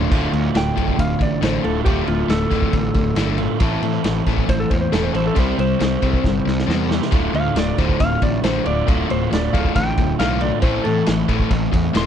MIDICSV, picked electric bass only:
0, 0, Header, 1, 2, 480
1, 0, Start_track
1, 0, Key_signature, -1, "minor"
1, 0, Tempo, 438276
1, 125, Time_signature, 4, 2, 24, 8
1, 13210, End_track
2, 0, Start_track
2, 0, Title_t, "Picked electric bass"
2, 0, Program_c, 0, 34
2, 124, Note_on_c, 0, 26, 91
2, 291, Note_off_c, 0, 26, 0
2, 365, Note_on_c, 0, 38, 77
2, 531, Note_off_c, 0, 38, 0
2, 605, Note_on_c, 0, 26, 72
2, 771, Note_off_c, 0, 26, 0
2, 849, Note_on_c, 0, 26, 84
2, 1013, Note_off_c, 0, 26, 0
2, 1078, Note_on_c, 0, 26, 85
2, 1246, Note_off_c, 0, 26, 0
2, 1319, Note_on_c, 0, 33, 80
2, 1487, Note_off_c, 0, 33, 0
2, 1557, Note_on_c, 0, 33, 83
2, 1725, Note_off_c, 0, 33, 0
2, 1809, Note_on_c, 0, 26, 73
2, 1973, Note_off_c, 0, 26, 0
2, 2036, Note_on_c, 0, 26, 86
2, 2204, Note_off_c, 0, 26, 0
2, 2272, Note_on_c, 0, 26, 80
2, 2441, Note_off_c, 0, 26, 0
2, 2508, Note_on_c, 0, 26, 81
2, 2679, Note_off_c, 0, 26, 0
2, 2751, Note_on_c, 0, 26, 82
2, 2921, Note_off_c, 0, 26, 0
2, 2991, Note_on_c, 0, 33, 90
2, 3161, Note_off_c, 0, 33, 0
2, 3229, Note_on_c, 0, 26, 82
2, 3399, Note_off_c, 0, 26, 0
2, 3454, Note_on_c, 0, 31, 85
2, 3797, Note_off_c, 0, 31, 0
2, 3948, Note_on_c, 0, 33, 95
2, 4119, Note_off_c, 0, 33, 0
2, 4185, Note_on_c, 0, 45, 87
2, 4357, Note_off_c, 0, 45, 0
2, 4430, Note_on_c, 0, 33, 84
2, 4600, Note_off_c, 0, 33, 0
2, 4670, Note_on_c, 0, 33, 88
2, 4840, Note_off_c, 0, 33, 0
2, 4911, Note_on_c, 0, 33, 88
2, 5080, Note_off_c, 0, 33, 0
2, 5153, Note_on_c, 0, 40, 78
2, 5322, Note_off_c, 0, 40, 0
2, 5398, Note_on_c, 0, 28, 88
2, 5565, Note_off_c, 0, 28, 0
2, 5626, Note_on_c, 0, 33, 81
2, 5798, Note_off_c, 0, 33, 0
2, 5879, Note_on_c, 0, 36, 89
2, 6046, Note_off_c, 0, 36, 0
2, 6115, Note_on_c, 0, 36, 79
2, 6283, Note_off_c, 0, 36, 0
2, 6362, Note_on_c, 0, 36, 78
2, 6528, Note_off_c, 0, 36, 0
2, 6600, Note_on_c, 0, 36, 83
2, 6767, Note_off_c, 0, 36, 0
2, 6835, Note_on_c, 0, 31, 80
2, 7004, Note_off_c, 0, 31, 0
2, 7082, Note_on_c, 0, 36, 71
2, 7248, Note_off_c, 0, 36, 0
2, 7320, Note_on_c, 0, 40, 86
2, 7655, Note_off_c, 0, 40, 0
2, 7803, Note_on_c, 0, 26, 90
2, 7970, Note_off_c, 0, 26, 0
2, 8032, Note_on_c, 0, 38, 73
2, 8203, Note_off_c, 0, 38, 0
2, 8270, Note_on_c, 0, 26, 83
2, 8441, Note_off_c, 0, 26, 0
2, 8524, Note_on_c, 0, 26, 87
2, 8691, Note_off_c, 0, 26, 0
2, 8766, Note_on_c, 0, 26, 89
2, 8932, Note_off_c, 0, 26, 0
2, 9002, Note_on_c, 0, 33, 83
2, 9170, Note_off_c, 0, 33, 0
2, 9235, Note_on_c, 0, 33, 84
2, 9405, Note_off_c, 0, 33, 0
2, 9483, Note_on_c, 0, 26, 81
2, 9650, Note_off_c, 0, 26, 0
2, 9726, Note_on_c, 0, 26, 93
2, 9893, Note_off_c, 0, 26, 0
2, 9981, Note_on_c, 0, 26, 79
2, 10142, Note_off_c, 0, 26, 0
2, 10215, Note_on_c, 0, 26, 77
2, 10379, Note_off_c, 0, 26, 0
2, 10447, Note_on_c, 0, 26, 82
2, 10613, Note_off_c, 0, 26, 0
2, 10684, Note_on_c, 0, 33, 89
2, 10852, Note_off_c, 0, 33, 0
2, 10925, Note_on_c, 0, 26, 85
2, 11092, Note_off_c, 0, 26, 0
2, 11169, Note_on_c, 0, 35, 94
2, 11503, Note_off_c, 0, 35, 0
2, 11638, Note_on_c, 0, 33, 94
2, 11808, Note_off_c, 0, 33, 0
2, 11891, Note_on_c, 0, 45, 79
2, 12056, Note_off_c, 0, 45, 0
2, 12129, Note_on_c, 0, 33, 83
2, 12295, Note_off_c, 0, 33, 0
2, 12360, Note_on_c, 0, 33, 90
2, 12529, Note_off_c, 0, 33, 0
2, 12601, Note_on_c, 0, 33, 94
2, 12770, Note_off_c, 0, 33, 0
2, 12841, Note_on_c, 0, 40, 83
2, 13010, Note_off_c, 0, 40, 0
2, 13085, Note_on_c, 0, 28, 93
2, 13210, Note_off_c, 0, 28, 0
2, 13210, End_track
0, 0, End_of_file